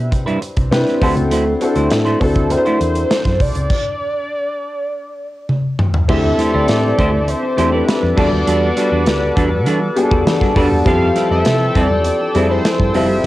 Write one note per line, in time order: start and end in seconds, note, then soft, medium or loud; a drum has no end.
0.00 0.12 B2 medium
0.00 0.71 C4 medium
0.00 0.71 D4 medium
0.00 0.72 E4 medium
0.00 0.72 G4 medium
0.00 0.72 B4 medium
0.11 0.35 C3 medium
0.11 muted clean electric guitar stroke soft
0.11 kick medium
0.11 closed hi-hat medium
0.26 0.40 G3 medium
0.26 0.40 D4 medium
0.26 0.40 E4 medium
0.26 0.41 B4 medium
0.26 closed hi-hat soft
0.42 closed hi-hat medium
0.56 0.68 C2 medium
0.56 muted clean electric guitar stroke soft
0.56 kick medium
0.56 closed hi-hat medium
0.71 0.83 C3 medium
0.71 1.00 C4 medium
0.71 1.00 D4 medium
0.71 1.00 E4 medium
0.71 1.02 G4 medium
0.71 1.02 B4 medium
0.71 snare loud
0.71 closed hi-hat medium
0.86 muted clean electric guitar stroke soft
0.86 snare soft
0.86 closed hi-hat soft
1.01 1.17 D2 medium
1.01 1.23 A3 medium
1.01 1.49 C4 medium
1.01 1.49 D4 medium
1.01 1.49 E4 medium
1.01 1.17 E4 medium
1.01 1.16 F#4 medium
1.01 1.50 F#4 medium
1.01 1.50 A4 medium
1.01 1.16 C5 medium
1.01 kick loud
1.01 open hi-hat medium
1.16 1.31 C#2 medium
1.16 muted clean electric guitar stroke soft
1.16 closed hi-hat soft
1.31 1.54 D2 medium
1.31 1.52 A3 medium
1.31 1.46 E4 medium
1.31 1.45 F#4 medium
1.31 1.45 C5 medium
1.31 closed hi-hat loud
1.46 muted clean electric guitar stroke soft
1.61 2.04 C4 medium
1.61 2.05 D4 medium
1.61 2.05 E4 medium
1.61 2.05 F#4 medium
1.61 2.05 A4 medium
1.61 muted clean electric guitar stroke soft
1.61 closed hi-hat medium
1.76 1.87 D2 medium
1.76 1.90 A3 medium
1.76 1.90 E4 medium
1.76 1.90 F#4 medium
1.76 1.91 C5 medium
1.76 closed hi-hat soft
1.90 2.14 A2 medium
1.90 snare loud
1.90 closed hi-hat medium
2.05 2.19 A3 medium
2.05 2.20 E4 medium
2.05 2.20 F#4 medium
2.05 2.21 C5 medium
2.05 closed hi-hat soft
2.20 2.55 D2 medium
2.20 2.42 C4 medium
2.20 2.42 D4 medium
2.20 2.42 E4 medium
2.20 2.43 F#4 medium
2.20 2.43 A4 medium
2.20 2.53 A4 medium
2.20 muted clean electric guitar stroke soft
2.20 kick medium
2.20 open hi-hat medium
2.35 muted clean electric guitar stroke soft
2.35 kick medium
2.35 closed hi-hat medium
2.50 3.37 C4 medium
2.50 3.37 D4 medium
2.50 3.37 E4 medium
2.50 3.37 F#4 medium
2.50 2.57 A#4 medium
2.50 3.43 C5 loud
2.50 muted clean electric guitar stroke soft
2.50 closed hi-hat medium
2.58 3.41 C5 medium
2.65 2.80 A3 medium
2.65 2.80 E4 medium
2.65 2.80 F#4 medium
2.65 2.81 C5 medium
2.65 closed hi-hat soft
2.81 3.03 E2 medium
2.81 muted clean electric guitar stroke soft
2.81 closed hi-hat medium
2.95 muted clean electric guitar stroke soft
2.95 closed hi-hat medium
3.10 muted clean electric guitar stroke soft
3.10 snare loud
3.10 closed hi-hat medium
3.25 3.37 F#2 medium
3.25 muted clean electric guitar stroke soft
3.25 kick medium
3.25 snare soft
3.25 closed hi-hat soft
3.40 3.52 C2 medium
3.40 5.79 D5 loud
3.40 kick loud
3.40 open hi-hat medium
3.55 3.67 C#2 medium
3.55 muted clean electric guitar stroke soft
3.55 closed hi-hat medium
3.70 kick loud
3.70 crash medium
5.49 high tom medium
5.79 mid tom medium
5.94 floor tom medium
6.08 6.31 D2 medium
6.08 7.84 E3 medium
6.08 6.30 A3 medium
6.08 6.95 C4 medium
6.08 7.84 C4 medium
6.08 8.16 C4 medium
6.08 6.95 D4 medium
6.08 6.30 E4 medium
6.08 6.95 E4 medium
6.08 6.30 G4 medium
6.08 6.96 G4 medium
6.08 6.16 G#4 medium
6.08 7.84 A4 loud
6.08 6.31 C5 medium
6.08 8.16 E5 medium
6.08 6.57 E5 loud
6.08 13.21 A5 medium
6.08 10.82 D6 medium
6.08 kick loud
6.08 crash loud
6.16 6.99 A4 medium
6.38 6.53 A3 medium
6.38 6.53 E4 medium
6.38 6.52 G4 medium
6.38 6.52 C5 medium
6.38 snare soft
6.38 closed hi-hat medium
6.53 6.65 D2 medium
6.53 6.67 A3 soft
6.53 6.68 E4 medium
6.53 6.68 G4 medium
6.53 6.68 C5 medium
6.53 7.31 D5 loud
6.68 6.92 A2 medium
6.68 muted clean electric guitar stroke soft
6.68 snare loud
6.68 closed hi-hat medium
6.83 muted clean electric guitar stroke soft
6.98 7.33 D2 medium
6.98 7.19 A3 medium
6.98 7.13 E4 medium
6.98 7.12 G4 loud
6.98 7.12 C5 medium
6.98 kick loud
6.98 closed hi-hat medium
7.13 muted clean electric guitar stroke soft
7.27 7.77 C5 loud
7.27 muted clean electric guitar stroke soft
7.27 closed hi-hat medium
7.43 muted clean electric guitar stroke soft
7.57 7.81 E2 medium
7.57 7.72 A3 medium
7.57 8.01 C4 medium
7.57 8.01 D4 medium
7.57 7.72 E4 medium
7.57 8.01 E4 medium
7.57 7.71 G4 medium
7.57 8.02 G4 medium
7.57 8.02 A4 medium
7.57 7.72 C5 medium
7.57 closed hi-hat medium
7.72 7.86 A3 medium
7.72 7.86 E4 medium
7.72 7.86 G4 medium
7.72 8.19 B4 loud
7.72 7.87 D5 medium
7.87 muted clean electric guitar stroke soft
7.87 snare loud
7.87 closed hi-hat medium
8.02 8.14 F2 loud
8.02 muted clean electric guitar stroke soft
8.16 8.29 E2 medium
8.16 8.38 G3 medium
8.16 9.13 G3 medium
8.16 10.52 G3 medium
8.16 9.13 B3 medium
8.16 8.32 D4 medium
8.16 9.13 D4 medium
8.16 8.31 F#4 medium
8.16 10.52 F#4 medium
8.16 9.13 F#4 medium
8.16 8.30 A4 loud
8.16 13.21 A4 medium
8.16 9.13 A4 medium
8.16 10.52 B4 medium
8.16 8.46 D5 medium
8.16 10.84 F#5 medium
8.16 kick loud
8.16 crash medium
8.32 8.44 D#2 medium
8.32 muted clean electric guitar stroke soft
8.46 8.70 E2 medium
8.46 8.68 G3 medium
8.46 8.69 D4 medium
8.46 8.69 F#4 medium
8.46 8.69 A4 medium
8.46 9.64 D5 loud
8.46 closed hi-hat loud
8.77 8.92 G3 medium
8.77 8.91 D4 medium
8.77 8.91 F#4 medium
8.77 8.90 A4 medium
8.77 snare soft
8.77 closed hi-hat medium
8.91 9.07 E2 loud
8.91 9.05 G3 soft
8.91 9.06 D4 medium
8.91 9.06 F#4 medium
8.91 9.06 A4 medium
9.06 9.30 D2 medium
9.06 muted clean electric guitar stroke soft
9.06 snare loud
9.06 closed hi-hat medium
9.21 muted clean electric guitar stroke soft
9.36 9.66 E2 medium
9.36 9.58 G3 medium
9.36 9.51 D4 medium
9.36 9.51 F#4 medium
9.36 9.50 A4 medium
9.36 kick medium
9.36 closed hi-hat medium
9.51 muted clean electric guitar stroke soft
9.66 9.89 E3 loud
9.66 9.88 G3 medium
9.66 9.82 D4 medium
9.66 9.81 F#4 medium
9.66 9.80 A4 medium
9.66 closed hi-hat medium
9.82 muted clean electric guitar stroke soft
9.96 10.39 G3 medium
9.96 10.40 B3 medium
9.96 10.40 D4 medium
9.96 10.40 F#4 medium
9.96 10.03 G#4 medium
9.96 muted clean electric guitar stroke soft
9.96 closed hi-hat medium
10.03 10.43 A4 medium
10.10 10.23 E2 medium
10.10 10.24 G3 soft
10.10 10.25 D4 soft
10.10 10.25 F#4 medium
10.10 10.25 A4 medium
10.10 kick loud
10.25 10.38 E3 medium
10.25 muted clean electric guitar stroke soft
10.25 snare loud
10.25 closed hi-hat medium
10.40 10.54 G3 medium
10.40 10.55 D4 medium
10.40 10.55 F#4 medium
10.40 10.56 A4 medium
10.40 kick medium
10.40 snare soft
10.55 10.67 E2 medium
10.55 10.77 G3 medium
10.55 10.77 B3 medium
10.55 10.78 D4 medium
10.55 10.71 D4 medium
10.55 10.78 F#4 medium
10.55 10.70 F#4 loud
10.55 10.78 A4 medium
10.55 10.70 B4 loud
10.55 kick medium
10.55 open hi-hat medium
10.71 10.83 E2 medium
10.71 muted clean electric guitar stroke soft
10.85 11.09 F2 loud
10.85 12.91 E3 medium
10.85 11.73 F3 medium
10.85 11.72 G3 medium
10.85 11.07 G3 medium
10.85 11.72 C4 medium
10.85 12.90 C4 medium
10.85 11.07 C4 medium
10.85 11.08 E4 medium
10.85 11.73 G4 medium
10.85 12.91 A4 loud
10.85 11.73 A4 medium
10.85 11.08 A4 medium
10.85 11.28 F5 loud
10.85 13.22 G5 medium
10.85 13.26 E6 medium
10.85 kick loud
10.85 closed hi-hat medium
11.15 11.31 G3 medium
11.15 11.30 C4 medium
11.15 11.30 E4 medium
11.15 11.29 A4 medium
11.15 snare soft
11.15 closed hi-hat medium
11.30 11.42 F2 medium
11.30 11.44 G3 medium
11.30 11.45 C4 medium
11.30 11.45 E4 medium
11.30 11.45 A4 medium
11.30 11.83 E5 loud
11.45 11.68 C3 medium
11.45 muted clean electric guitar stroke soft
11.45 snare loud
11.45 closed hi-hat medium
11.60 muted clean electric guitar stroke soft
11.75 12.10 E2 medium
11.75 11.96 G3 medium
11.75 11.90 C4 medium
11.75 11.89 E4 medium
11.75 11.89 A4 medium
11.75 kick medium
11.75 closed hi-hat medium
11.83 12.06 D5 loud
11.90 muted clean electric guitar stroke soft
12.05 12.51 D5 loud
12.05 muted clean electric guitar stroke soft
12.05 closed hi-hat medium
12.20 muted clean electric guitar stroke soft
12.34 12.58 F2 medium
12.34 12.79 F3 medium
12.34 12.50 G3 medium
12.34 12.78 G3 medium
12.34 12.78 C4 medium
12.34 12.49 C4 medium
12.34 12.79 E4 medium
12.34 12.49 E4 medium
12.34 12.42 G#4 medium
12.34 12.49 A4 loud
12.34 closed hi-hat medium
12.42 12.82 A4 medium
12.50 12.64 G3 soft
12.50 12.64 C4 medium
12.50 12.64 E4 medium
12.50 12.65 B4 medium
12.50 12.98 C5 medium
12.65 muted clean electric guitar stroke soft
12.65 snare loud
12.65 closed hi-hat medium
12.80 12.91 G2 medium
12.80 muted clean electric guitar stroke soft
12.80 kick medium
12.94 13.09 F1 medium
12.94 13.16 G3 medium
12.94 13.16 C4 medium
12.94 13.09 C4 medium
12.94 13.16 E4 medium
12.94 13.09 E4 medium
12.94 13.16 F4 medium
12.94 13.08 A4 medium
12.94 13.17 C5 medium
12.94 13.25 E5 loud
12.94 open hi-hat medium
13.09 13.21 F#1 medium
13.09 muted clean electric guitar stroke soft